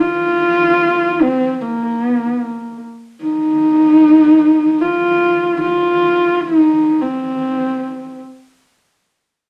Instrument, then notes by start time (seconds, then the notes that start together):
horsehead fiddle
0.01 F4
1.22 C4
1.61 A#3
2.04 B3
2.15 A#3
3.22 D#4
4.81 F4
5.62 F4
6.41 D#4
7.01 C4